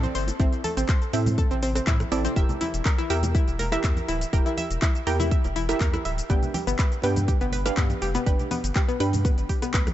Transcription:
Already playing: C4 E4 A4 D5
0.03 C4, closed hi-hat, high bongo, high conga, shaker
0.15 G1 C5, open hi-hat
0.28 closed hi-hat, high bongo, shaker
0.40 A1 C4 E4 A4 E5, kick, closed hi-hat, shaker
0.53 closed hi-hat, shaker
0.64 A4, open hi-hat, high bongo, high conga
0.77 A1 C4, closed hi-hat, shaker
0.89 C5, kick, clap, closed hi-hat, high bongo, shaker
1.02 closed hi-hat, shaker
1.13 A2 C4 E4 A4 E5, open hi-hat, high bongo
1.26 open hi-hat, high conga, low conga, shaker
1.38 A4, kick, closed hi-hat, high bongo, shaker
1.51 A1 C4, closed hi-hat, shaker
1.63 C4, open hi-hat
1.75 C4, cross-stick, closed hi-hat, high bongo, shaker
1.87 A2 E4, kick, clap, closed hi-hat, shaker
2.00 cross-stick, closed hi-hat, high bongo, high conga, shaker
2.12 A1 C4 E4 A4 D5, open hi-hat
2.24 C4, closed hi-hat, high bongo, shaker
2.36 E1 E4 G4 A#4 E5 G5, kick, closed hi-hat, high bongo, shaker
2.49 closed hi-hat, low conga, shaker
2.61 E4, open hi-hat, high bongo, high conga
2.74 E1, closed hi-hat, shaker
2.85 A#4, kick, clap, closed hi-hat, shaker
2.98 E4, closed hi-hat, high bongo, shaker
3.10 E2 E4 G4 A#4 E5 G5, open hi-hat
3.23 closed hi-hat, high bongo, high conga, low conga, shaker
3.35 E4, kick, closed hi-hat, shaker
3.48 E1, closed hi-hat, high bongo, shaker
3.59 A#4, open hi-hat, low conga
3.72 E4 G4 A#4 E5, cross-stick, closed hi-hat, high bongo, shaker
3.84 E2 E5, kick, clap, closed hi-hat, shaker
3.97 closed hi-hat, high conga, shaker
4.08 D1 E4, open hi-hat, high bongo
4.21 closed hi-hat, shaker
4.33 E1 E4 G4 A#4 G5, kick, closed hi-hat, high bongo, shaker
4.46 E4, closed hi-hat, shaker
4.57 E5, open hi-hat, high bongo, high conga
4.71 E1, closed hi-hat, shaker
4.82 E4, kick, clap, closed hi-hat, high bongo, shaker
4.95 closed hi-hat, shaker
5.07 E2 E4 G4 A#4 G5, open hi-hat
5.19 E4, open hi-hat, high bongo, high conga, low conga, shaker
5.31 E5, kick, closed hi-hat, shaker
5.44 E1, closed hi-hat, high bongo, shaker
5.56 E4, open hi-hat
5.69 E4 G4 A#4 E5, cross-stick, closed hi-hat, high bongo, shaker
5.80 E2 A#4, kick, clap, closed hi-hat, shaker
5.93 E4, cross-stick, closed hi-hat, high bongo, high conga, shaker
6.05 D1 E5, open hi-hat
6.18 closed hi-hat, shaker
6.29 G1 B3 D4 G4 B4 G5, kick, closed hi-hat, high bongo, shaker
6.42 closed hi-hat, low conga, shaker
6.54 G4, open hi-hat, high bongo, high conga
6.67 G1 B3, closed hi-hat, shaker
6.79 B4, kick, clap, closed hi-hat, high bongo, shaker
6.92 closed hi-hat, shaker
7.02 G2 B3 D4 G4 B4 G5, open hi-hat, high bongo
7.16 closed hi-hat, high conga, low conga, shaker
7.28 G4, kick, closed hi-hat, shaker
7.41 G1 B3, closed hi-hat, high bongo, shaker
7.52 B4, open hi-hat, low conga
7.66 D4 G4 B4 F5, cross-stick, closed hi-hat, high bongo, shaker
7.77 G2 B3, kick, clap, closed hi-hat, shaker
7.90 closed hi-hat, high bongo, high conga, shaker
8.02 F1 G4, open hi-hat
8.14 B3, closed hi-hat, high bongo, shaker
8.26 G1 D4 G4 B4 G5, kick, closed hi-hat, shaker
8.39 closed hi-hat, low conga, shaker
8.51 B3, open hi-hat, high bongo, high conga
8.64 G1, closed hi-hat, shaker
8.76 G4, kick, clap, closed hi-hat, high bongo, shaker
8.89 B3, closed hi-hat, shaker
9.00 G2 D4 G4 B4 G5, open hi-hat, high bongo
9.13 open hi-hat, high conga, low conga, shaker
9.25 B3, kick, closed hi-hat, high bongo, shaker
9.38 G1, closed hi-hat, shaker
9.49 G4, kick, open hi-hat
9.62 B3, cross-stick, closed hi-hat, high bongo, shaker
9.74 D2 B4, kick, clap, closed hi-hat, shaker
9.87 cross-stick, closed hi-hat, high bongo, high conga, shaker

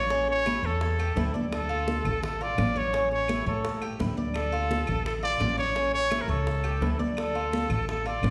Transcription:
Already playing: A1 C#5
0.10 C#4, high bongo, high conga
0.29 C#5, high bongo, high conga
0.46 E4, high bongo, high conga, claves
0.63 E2 A4 C#5
0.81 high bongo, high conga
0.99 G4, high bongo, high conga, claves
1.16 D2 E4, high bongo, low bongo, high conga
1.34 D5, high bongo, high conga
1.52 A4, high bongo, high conga, claves
1.69 F4, high bongo, high conga
1.88 high bongo, high conga
2.05 A1 A4, high conga, low conga, claves
2.23 A4, high bongo, high conga, low conga
2.41 F4 D5, high bongo, high conga
2.58 A1, high bongo, low bongo, high conga, claves
2.76 C#5, high bongo, high conga
2.93 C#4, high bongo, high conga
3.12 C#5, high bongo, high conga
3.28 E4, high bongo, high conga, claves
3.46 A2 A4 C#5
3.65 high bongo, high conga
3.82 G4, high bongo, high conga, claves
3.99 D2 E4, high bongo, low bongo, high conga
4.17 D5, high bongo, high conga
4.34 A4, high bongo, claves
4.52 F4, high bongo, high conga
4.71 high bongo, high conga
4.87 A1 A4, high conga, low conga, claves
5.06 A4, high bongo, high conga
5.23 F4 D5, high bongo, high conga
5.40 A1, high bongo, low bongo, high conga, claves
5.57 C#5, high bongo, high conga
5.75 C#4, high bongo, high conga
5.94 C#5, high bongo, high conga
6.11 E4, high bongo, high conga, claves
6.21 A#4
6.28 C#2 A4 C#5
6.47 high bongo, high conga
6.64 G4, high bongo, high conga, claves
6.81 D2 E4, high bongo, low bongo, high conga
6.99 D5, high bongo, high conga
7.17 A4, high bongo, high conga, claves
7.35 F4, high bongo, high conga
7.53 high bongo, high conga
7.70 A1 A4, high conga, low conga, claves
7.88 A4, high bongo, high conga
8.06 F4 D5, high bongo, high conga
8.23 A1, high bongo, low bongo, high conga, claves

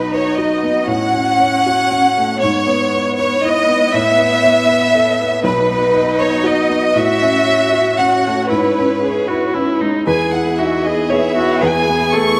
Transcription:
Already playing: B1 B3 D#4 F#4 B4 D#5
0.11 B4 C#5
0.36 F#4 D#5
0.63 B3
0.87 A2 C#4 C#5 F#5
1.14 C#4
1.40 C#5
1.66 F#4
1.91 C#4
2.18 A3
2.40 G#2 B3 E4 C#5
2.67 B3
2.93 C#5
3.18 B4 C#5
3.41 E4 D#5
3.69 B3
3.91 A2 E5
4.19 B3
4.43 C#5
4.69 B4
4.95 A4
5.21 B3
5.44 B1 D#4 F#4 B4 D#5
5.70 B3
5.94 D#5
6.19 B4 C#5
6.44 F#4 D#5
6.69 B3
6.95 A2 C#4 F#4 C#5 E5
7.22 C#4
7.47 C#5
7.73 F#4
7.98 C#4 F#4 F#5
8.27 A3
8.49 G#2 E4 B4
8.79 C#4
9.02 G#4 C#5
9.28 E4 F#4
9.54 C#4 E4
9.81 G#3 D#4
10.06 E2 B3 E4 G#4 B4 G#5
10.31 E4 F#5
10.56 D#4 F#4 E5
10.83 E4 G#4 D#5
11.08 B3 G#4 C#5 E5
11.36 E4 F#4
11.61 E2 G#4 B4 G#5
11.89 B3
12.12 A3 A4 C#6

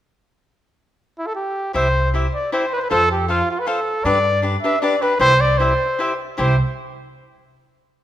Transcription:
1.19 E4
1.27 A4
1.35 G4
1.74 C2 E4 G4 C5 E5
2.14 E4 G4 C5 E5
2.34 D5
2.52 E4 G4 C5 E5
2.73 B4 C5
2.81 B4
2.90 F2 F4 A4 C5 F5
3.11 G4
3.28 F4 A4 C5 F5
3.50 F4
3.59 B4
3.67 F4 A4 C5 F5
4.04 G2 D4 G4 B4 D5
4.42 D4 G4 B4 D5
4.63 D4 G4 B4 D5 E5
4.81 D4 G4 B4 D5
5.01 D4 G4 B4 D5
5.19 C2 E4 G4 C5 E5
5.41 D5
5.58 E4 G4 C5 E5
5.99 E4 G4 C5 E5
6.37 C2 E4 G4 C5 E5

